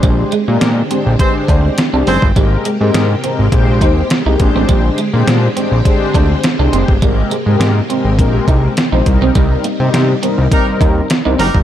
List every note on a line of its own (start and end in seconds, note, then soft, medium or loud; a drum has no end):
0.00 0.24 A#1 loud
0.00 2.34 D3 medium
0.00 0.14 G3 medium
0.00 0.32 G#3 loud
0.00 2.34 G#3 medium
0.00 2.34 C4 medium
0.00 0.33 D4 medium
0.00 0.33 G4 medium
0.00 9.02 G4 medium
0.00 0.33 C5 loud
0.00 kick loud
0.00 closed hi-hat medium
0.32 0.43 G#3 medium
0.32 closed hi-hat medium
0.48 0.58 A#2 medium
0.48 0.80 G#3 medium
0.48 0.80 D4 medium
0.48 0.81 G4 medium
0.48 0.81 A#4 loud
0.48 muted clean electric guitar stroke soft
0.61 0.83 A#2 loud
0.61 snare loud
0.61 closed hi-hat loud
0.90 1.13 G#3 medium
0.90 1.02 C4 medium
0.90 1.13 D4 medium
0.90 1.13 G4 medium
0.90 1.13 C5 medium
0.90 closed hi-hat medium
1.06 1.16 A#1 medium
1.19 1.75 G#3 medium
1.19 1.33 C4 medium
1.19 1.75 D4 medium
1.19 1.75 G4 medium
1.19 1.33 G#4 medium
1.19 1.27 B4 medium
1.19 1.33 C5 loud
1.19 kick loud
1.19 closed hi-hat loud
1.27 1.78 C5 loud
1.48 1.70 D2 loud
1.48 1.60 D4 medium
1.48 kick loud
1.48 closed hi-hat medium
1.78 muted clean electric guitar stroke soft
1.78 snare loud
1.78 closed hi-hat loud
1.93 2.03 C2 medium
1.93 2.26 G#3 medium
1.93 2.26 D4 medium
1.93 2.03 D4 medium
1.93 2.26 G4 medium
1.93 2.26 C5 medium
2.07 2.18 F#1 medium
2.07 2.26 C4 loud
2.07 2.18 C4 medium
2.07 2.26 G#4 loud
2.07 2.25 C5 loud
2.07 open hi-hat medium
2.22 2.32 G1 medium
2.22 kick medium
2.36 2.57 G#1 loud
2.36 4.38 C3 medium
2.36 2.47 G3 loud
2.36 2.69 G#3 medium
2.36 9.02 G#3 medium
2.36 4.38 A#3 medium
2.36 2.69 C4 medium
2.36 2.69 G4 medium
2.36 2.70 A#4 loud
2.36 kick loud
2.36 closed hi-hat medium
2.65 2.76 G#3 medium
2.65 closed hi-hat medium
2.81 2.91 G#2 loud
2.81 3.13 G#3 loud
2.81 3.13 C4 medium
2.81 3.14 G4 medium
2.81 3.14 A#4 loud
2.81 muted clean electric guitar stroke soft
2.94 3.15 G#2 loud
2.94 snare loud
2.94 closed hi-hat loud
3.24 3.46 G#3 medium
3.24 3.35 C4 medium
3.24 3.46 C4 medium
3.24 3.46 G4 medium
3.24 3.46 A#4 medium
3.24 closed hi-hat medium
3.39 3.49 G#1 medium
3.52 3.83 A#1 loud
3.52 4.08 G#3 medium
3.52 4.08 C4 medium
3.52 4.08 G4 medium
3.52 4.08 C5 loud
3.52 kick loud
3.52 closed hi-hat medium
3.81 4.02 D#2 medium
3.81 3.93 D#4 medium
3.81 kick loud
3.81 closed hi-hat medium
4.10 snare loud
4.10 closed hi-hat medium
4.26 4.36 C2 loud
4.26 4.38 G#3 medium
4.26 4.40 C4 medium
4.26 4.36 D#4 medium
4.26 4.39 G4 medium
4.26 4.40 A#4 medium
4.40 4.51 A#1 loud
4.40 6.99 D3 medium
4.40 4.98 G#3 loud
4.40 6.99 C4 medium
4.40 4.98 D4 medium
4.40 4.98 G4 medium
4.40 4.99 C5 loud
4.40 muted clean electric guitar stroke soft
4.40 kick loud
4.40 closed hi-hat medium
4.55 4.65 A1 medium
4.55 4.65 C4 medium
4.69 4.90 A#1 loud
4.69 4.80 G3 loud
4.69 kick loud
4.69 closed hi-hat medium
4.98 5.09 G#3 medium
4.98 closed hi-hat medium
5.13 5.23 A#2 medium
5.13 5.46 G#3 loud
5.13 5.46 D4 medium
5.13 5.47 G4 medium
5.13 5.47 C5 loud
5.13 muted clean electric guitar stroke soft
5.28 5.48 A#2 loud
5.28 snare loud
5.28 closed hi-hat loud
5.56 5.79 G#3 medium
5.56 5.67 C4 medium
5.56 5.79 D4 medium
5.56 5.79 G4 medium
5.56 5.79 C5 medium
5.56 closed hi-hat medium
5.72 5.82 A#1 medium
5.85 6.40 G#3 medium
5.85 6.40 D4 medium
5.85 6.41 G4 medium
5.85 6.41 C5 loud
5.85 kick loud
5.85 closed hi-hat medium
6.14 6.36 D2 medium
6.14 6.26 D4 medium
6.14 kick loud
6.14 closed hi-hat medium
6.44 muted clean electric guitar stroke soft
6.44 snare loud
6.44 closed hi-hat loud
6.59 6.69 C2 medium
6.59 6.92 G#3 medium
6.59 6.69 D4 medium
6.59 6.92 D4 medium
6.59 6.92 G4 medium
6.59 6.92 C5 loud
6.73 6.84 F#1 loud
6.73 6.84 C4 medium
6.73 closed hi-hat medium
6.88 6.98 G1 loud
6.88 kick medium
7.01 7.23 G#1 loud
7.01 11.63 C3 medium
7.01 7.13 G3 loud
7.01 7.35 G#3 medium
7.01 9.04 A#3 medium
7.01 7.35 C4 medium
7.01 7.36 G4 medium
7.01 7.36 A#4 loud
7.01 kick loud
7.01 closed hi-hat medium
7.31 7.42 G#3 medium
7.31 closed hi-hat medium
7.46 7.56 G#2 loud
7.46 7.79 G#3 loud
7.46 7.80 C4 medium
7.46 7.80 G4 medium
7.46 7.80 A#4 loud
7.46 muted clean electric guitar stroke soft
7.60 7.81 G#2 loud
7.60 snare loud
7.60 closed hi-hat loud
7.90 8.12 G#3 medium
7.90 8.01 C4 medium
7.90 8.12 C4 medium
7.90 8.12 G4 medium
7.90 8.13 A#4 medium
7.90 closed hi-hat medium
8.04 8.20 G#1 medium
8.19 8.40 A#1 loud
8.19 8.74 G#3 medium
8.19 8.74 C4 medium
8.19 8.74 G4 medium
8.19 8.74 A#4 loud
8.19 kick loud
8.19 closed hi-hat medium
8.48 8.69 C2 medium
8.48 8.59 D#4 medium
8.48 kick loud
8.48 closed hi-hat medium
8.77 snare loud
8.77 closed hi-hat medium
8.92 9.02 A#1 medium
8.92 9.06 G#3 medium
8.92 9.05 C4 medium
8.92 9.02 D#4 medium
8.92 9.07 G4 medium
8.92 9.07 C5 medium
9.06 9.17 C2 medium
9.06 9.64 G3 loud
9.06 11.63 G3 medium
9.06 11.63 A#3 medium
9.06 9.65 C4 medium
9.06 11.63 D#4 medium
9.06 9.65 D#4 medium
9.06 9.65 A#4 loud
9.06 muted clean electric guitar stroke soft
9.06 kick loud
9.06 closed hi-hat medium
9.21 9.31 B1 loud
9.21 9.31 C4 medium
9.35 9.56 C2 loud
9.35 9.46 G3 loud
9.35 kick loud
9.35 closed hi-hat medium
9.64 9.75 A#3 medium
9.64 closed hi-hat medium
9.80 9.90 C3 loud
9.80 10.12 G3 medium
9.80 10.12 C4 medium
9.80 10.13 D#4 medium
9.80 10.13 G4 loud
9.80 muted clean electric guitar stroke soft
9.94 10.15 C3 loud
9.94 snare loud
9.94 closed hi-hat loud
10.22 10.45 G3 medium
10.22 10.45 C4 medium
10.22 10.33 C4 medium
10.22 10.45 D#4 medium
10.22 10.45 A#4 medium
10.22 closed hi-hat medium
10.38 10.48 C2 loud
10.52 11.07 G3 medium
10.52 11.07 C4 medium
10.52 10.65 D#4 medium
10.52 11.07 D#4 medium
10.52 10.65 G4 medium
10.52 10.65 A#4 loud
10.52 11.07 A#4 loud
10.52 kick loud
10.52 closed hi-hat loud
10.81 11.02 D#2 medium
10.81 10.92 D#4 medium
10.81 kick loud
10.81 closed hi-hat medium
11.10 muted clean electric guitar stroke soft
11.10 snare loud
11.10 closed hi-hat medium
11.25 11.36 C2 medium
11.25 11.58 G3 medium
11.25 11.58 C4 medium
11.25 11.35 D#4 medium
11.25 11.58 D#4 medium
11.25 11.58 A#4 loud
11.39 11.50 F#1 loud
11.39 11.50 C4 medium
11.39 11.58 D#4 loud
11.39 11.58 G4 loud
11.39 11.58 A#4 loud
11.39 open hi-hat medium
11.54 11.63 G1 loud
11.54 kick loud